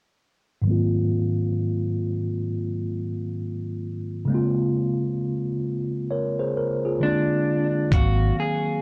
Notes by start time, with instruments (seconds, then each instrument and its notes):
0.62 tine electric piano G#2 D#3 F#3
0.67 tine electric piano A#3 C4 F4
4.25 tine electric piano C#3 G#3
4.30 tine electric piano A#3 C4
4.34 tine electric piano F4
6.11 tine electric piano A#4 C#5
6.39 tine electric piano G#4 C5
6.57 tine electric piano A#4
6.85 tine electric piano F4 G#4
7.00 tine electric piano D3 G#3 A#3 C4, clean electric guitar D4
7.05 tine electric piano F4
7.91 fingered electric bass G#1, tine electric piano D#3 F#3 A#3 C4, clean electric guitar F#4, kick, closed hi-hat
7.95 tine electric piano F5
8.40 clean electric guitar G#4